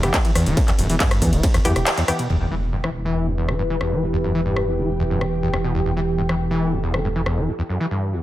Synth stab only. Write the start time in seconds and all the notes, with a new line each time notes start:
0.03 E3 B3 G4
1.65 E3 B3 G4
2.08 E3 B3 G4